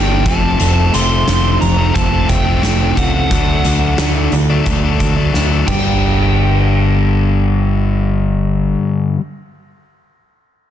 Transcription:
Already playing: G1 G2 D3 G3 A#3 D4 G5
0.08 G3 A#3 D4
0.25 F1 F2 C3 F3 A3 C4 A5, kick, closed hi-hat
0.42 F3 A3 C4
0.59 F1 F2 C3 F3 A3 C4, closed hi-hat
0.93 F1 C3 F3 A3 C4 C6, closed hi-hat
1.26 F1 F2 C3 F3 A3 C4, snare, closed hi-hat
1.43 F3 A3 C4
1.61 F1 F3 A#5, muted overdriven electric guitar stroke, closed hi-hat
1.77 F3 A3 C4
1.95 F1 A3 A5, kick, closed hi-hat
2.11 F3 A3 C4
2.29 F1 F3 G5, kick, closed hi-hat
2.45 F3 A3 C4
2.62 F1 F2 C3 F3 A3 C4, snare, closed hi-hat
2.80 F3 A3 C4
2.97 C#2 C3 F3 A3 C4 F#5, kick, closed hi-hat
3.14 F3 A3 C4
3.31 D2 D3 F#3 A3 D4, kick, closed hi-hat
3.65 D2 D3 F#3 A3 D4, closed hi-hat
3.98 D2 D3 F#3 A3 D4, snare, closed hi-hat
4.16 F#3 A3 D4
4.32 D2 D3, muted overdriven electric guitar stroke, closed hi-hat
4.50 F#3 A3 D4
4.66 D2 A3, kick, closed hi-hat
4.84 F#3 A3 D4
4.99 D2 D3, kick, closed hi-hat
5.17 F#3 A3 D4
5.34 D2 D3 F#3 A3 D4, snare
5.50 F#3 A3 D4
5.66 G1 G2 D3 A#3 D4 G4 G5, kick, crash
5.71 G3

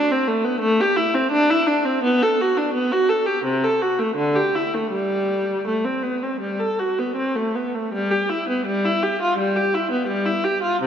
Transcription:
0.11 C4
0.28 A3
0.45 B3
0.60 A3
0.80 G4
0.96 E4
1.15 C4
1.31 D4
1.50 E4
1.67 D4
1.85 C4
2.03 B3
2.23 A4
2.41 F#4
2.58 D4
2.74 B3
2.92 F#4
3.09 A4
3.26 G4
3.44 C3
3.64 A4
3.82 F#4
3.99 A3
4.16 D3
4.36 G4
4.55 E4
4.74 A3
4.90 G3
5.67 A3
5.85 C4
6.03 B3
6.23 C4
6.40 G3
6.60 A4
6.79 F#4
6.99 B3
7.16 C4
7.36 A3
7.55 B3
7.75 A3
7.93 G3
8.11 G4
8.30 E4
8.49 B3
8.66 G3
8.85 E4
9.03 G4
9.22 F4
9.38 G3
9.56 G4
9.74 E4
9.91 B3
10.07 G3
10.26 E4
10.44 G4
10.63 F4
10.82 C3

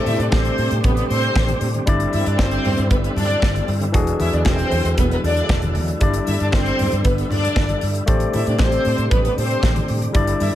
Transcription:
Already playing: C3 G3 A3 C4 D4 G4 A4 C5 D5
0.06 A2 E4 E5, open hi-hat, muted conga
0.19 A2 D4 D5, closed hi-hat
0.32 A1 C4 C5, kick, snare, high conga
0.45 closed hi-hat
0.58 A2, open hi-hat
0.71 A2, closed hi-hat
0.84 A1 B3 B4, kick, closed hi-hat, low conga
0.96 B3 B4, closed hi-hat
1.09 A2 C4 C5, open hi-hat
1.23 closed hi-hat
1.36 A1, kick, snare, high conga
1.48 closed hi-hat, high conga
1.61 A2, open hi-hat
1.74 closed hi-hat, high conga
1.86 G1 D3 G3 D4 E4 D5, kick, closed hi-hat, muted conga
2.00 closed hi-hat
2.13 G2 E4 E5, open hi-hat, muted conga
2.26 G2 D4 D5, closed hi-hat
2.38 G1 C4 C5, kick, snare, high conga
2.51 closed hi-hat
2.65 G2, open hi-hat, low conga
2.78 G2, closed hi-hat
2.90 G1 B3 B4, kick, closed hi-hat, muted conga
3.03 B3 B4, closed hi-hat
3.16 G2 D4 D5, open hi-hat, low conga
3.30 closed hi-hat
3.42 G1, kick, snare, high conga
3.55 closed hi-hat, high conga
3.68 G2, open hi-hat
3.80 closed hi-hat, high conga
3.92 E1 E3 F#3 G#3 D4 F#4 G#4, kick, closed hi-hat, muted conga
4.07 closed hi-hat
4.20 E2 E4 E5, open hi-hat, muted conga
4.33 E2 D4 D5, closed hi-hat
4.45 E1 C4 C5, kick, snare, high conga
4.59 closed hi-hat
4.71 E2, open hi-hat
4.84 E2, closed hi-hat
4.98 E1 B3 B4, kick, closed hi-hat, muted conga, low conga
5.11 B3 B4, closed hi-hat
5.24 E2 D4 D5, open hi-hat
5.37 closed hi-hat
5.49 E1, kick, snare, high conga
5.62 closed hi-hat, high conga
5.75 E2, open hi-hat
5.88 closed hi-hat, high conga
6.00 G1 G3 D4 E4 D5, kick, closed hi-hat, muted conga
6.14 closed hi-hat
6.27 G2 E4 E5, open hi-hat, muted conga
6.40 G2 D4 D5, closed hi-hat
6.52 G1 C4 C5, kick, snare, high conga
6.66 closed hi-hat
6.79 G2, open hi-hat, low conga
6.92 G2, closed hi-hat
7.04 G1 B3 B4, kick, closed hi-hat, muted conga
7.18 B3 B4, closed hi-hat
7.30 G2 D4 D5, open hi-hat, low conga
7.45 closed hi-hat
7.56 G1, kick, snare, high conga
7.69 closed hi-hat, high conga
7.81 G2, open hi-hat
7.95 closed hi-hat
8.06 A1 C3 A3 D4 G4 A4 C5 D5, kick, closed hi-hat, muted conga
8.20 closed hi-hat
8.33 A2 E4 E5, open hi-hat, muted conga
8.47 A2 D4 D5, closed hi-hat
8.59 A1 C4 C5, kick, snare, high conga
8.72 closed hi-hat
8.85 A2, open hi-hat
8.98 A2, closed hi-hat
9.11 A1 B3 B4, kick, closed hi-hat, muted conga, low conga
9.25 B3 B4, closed hi-hat
9.38 A2 C4 C5, open hi-hat
9.51 closed hi-hat
9.63 A1, kick, snare, high conga
9.76 closed hi-hat, high conga
9.88 A2, open hi-hat
10.02 closed hi-hat, high conga
10.13 G1 D3 G3 D4 E4 D5, kick, closed hi-hat, muted conga
10.27 closed hi-hat
10.40 G2 E4 E5, open hi-hat, muted conga

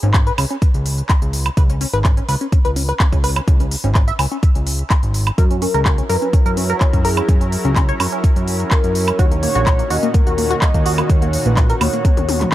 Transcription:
0.03 G#1 C#4, closed hi-hat
0.14 C#4, kick, clap, closed hi-hat
0.27 B4, closed hi-hat
0.38 C#2 C#4, open hi-hat, high woodblock
0.51 C#4, closed hi-hat
0.62 kick, closed hi-hat
0.74 C#2, closed hi-hat
0.86 open hi-hat
0.98 closed hi-hat
1.09 kick, clap, closed hi-hat
1.22 C#2, closed hi-hat
1.33 open hi-hat
1.46 closed hi-hat, high woodblock
1.57 C#2 B4, kick, closed hi-hat
1.70 C#4, closed hi-hat
1.81 C#4, open hi-hat
1.93 G#1 B4, closed hi-hat
2.04 C#4, kick, clap, closed hi-hat
2.17 C#4, closed hi-hat
2.29 C#2 B4, open hi-hat
2.41 C#4, closed hi-hat
2.52 C#4, kick, closed hi-hat
2.65 C#2 B4, closed hi-hat
2.76 C#4, open hi-hat
2.89 B4, closed hi-hat
3.00 C#4, kick, clap, closed hi-hat
3.12 C#2 C#4, kick, closed hi-hat
3.24 B4, open hi-hat
3.36 C#4, closed hi-hat, high woodblock
3.48 C#2 C#4, kick, closed hi-hat
3.60 C#4, closed hi-hat
3.71 open hi-hat
3.84 G#1 C#4, closed hi-hat
3.95 C#4, kick, clap, closed hi-hat
4.08 E5, closed hi-hat
4.19 C#2 C#4, open hi-hat, high woodblock
4.32 C#4, closed hi-hat
4.43 kick, closed hi-hat
4.55 C#2, closed hi-hat
4.67 open hi-hat
4.79 closed hi-hat
4.90 kick, clap, closed hi-hat
5.03 G#1, closed hi-hat
5.14 open hi-hat
5.27 closed hi-hat, high woodblock
5.38 F#2 F#3 C#4 E4 F#4 A#4, kick, closed hi-hat
5.51 C#4, closed hi-hat
5.62 C#4 A#4, open hi-hat
5.74 C#2 A#4, closed hi-hat
5.85 C#4 A#4, kick, clap, closed hi-hat
5.98 C#4, closed hi-hat
6.10 F#2 A#4 B4, open hi-hat
6.22 C#4, closed hi-hat
6.33 C#4 A#4, kick, closed hi-hat
6.46 F#2 A#4, closed hi-hat
6.57 C#4 C#5, open hi-hat
6.70 A#4, closed hi-hat
6.81 C#4, kick, clap, closed hi-hat
6.93 F#2 C#4, kick, closed hi-hat
7.05 G#4 A#4, open hi-hat
7.17 C#4, closed hi-hat, high woodblock
7.29 F#2 C#4, kick, closed hi-hat
7.41 C#4, closed hi-hat
7.52 open hi-hat
7.65 C#2 C#4, closed hi-hat
7.76 C#4, kick, clap, closed hi-hat
7.89 C#5, closed hi-hat
8.00 F#2 C#4, open hi-hat, high woodblock
8.12 C#4, closed hi-hat
8.24 kick, closed hi-hat
8.36 F#2, closed hi-hat
8.48 open hi-hat
8.60 closed hi-hat
8.71 A#4, kick, clap, closed hi-hat
8.84 F#2, closed hi-hat
8.95 open hi-hat
9.08 closed hi-hat, high woodblock
9.19 D#2 A#2 D#3 F#4 C#5, kick, closed hi-hat
9.32 A#3, closed hi-hat
9.43 A#3 C#5, open hi-hat
9.55 A#1 F#4, closed hi-hat
9.66 A#3, kick, clap, closed hi-hat
9.79 A#3, closed hi-hat
9.90 D#2 F#4 D#5, open hi-hat
10.03 A#3, closed hi-hat
10.14 A#3 A#4, kick, closed hi-hat
10.27 D#2 F#4, closed hi-hat
10.38 A#3, open hi-hat
10.51 F#4, closed hi-hat
10.61 A#3 D#5, kick, clap, closed hi-hat
10.74 D#2 A#3, kick, closed hi-hat
10.86 F#4, open hi-hat
10.98 A#3, closed hi-hat, high woodblock
11.10 D#2 A#3 C#5, kick, closed hi-hat
11.22 A#3, closed hi-hat
11.33 open hi-hat
11.46 A#1 A#3 B4, closed hi-hat
11.57 A#3, kick, clap, closed hi-hat
11.70 A#4, closed hi-hat
11.81 D#2 A#3 C#5, open hi-hat, high woodblock
11.93 A#3, closed hi-hat
12.05 kick, closed hi-hat, high tom
12.17 D#2, closed hi-hat, high tom
12.29 open hi-hat, high tom
12.41 clap, closed hi-hat, mid tom

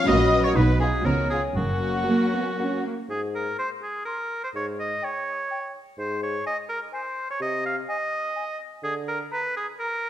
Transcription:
Already playing: C#4
0.06 A#1 A#2 F#3 C#4 F#4 B4 D#5 D#6
0.43 A#4 C#5 C#6
0.55 B1 B2 F#3 D#4 F#4 B4 B5
0.80 F4 G#4 G#5
1.04 C#2 C#3 F3 B3 C#4 F#4 A#4 A#5
1.30 F4 G#4 G#5
1.56 F#1 F#2 F#3 A#3 C#4 F#4 F#5
2.08 F#3 A#3
2.33 B3
2.58 F#3 A#3 C#4
2.84 A#3
3.09 G#2 G#4
3.35 A#4
3.58 C5 C6
3.83 G#4
4.05 A#4 C6
4.44 C5
4.54 G#2 C#5
4.80 D#5
5.02 C#5 G5
5.50 G5
5.98 G#2 C5
6.23 C#5
6.45 D#5 G#5
6.69 A#4
6.92 C5 G#5
7.31 C#5
7.40 C3 D#5
7.66 F5
7.88 D#5 G#5
8.35 G#5
8.83 D3 G#4
9.08 A#4
9.31 B4 A#5
9.57 G#4
9.79 A#4 A#5

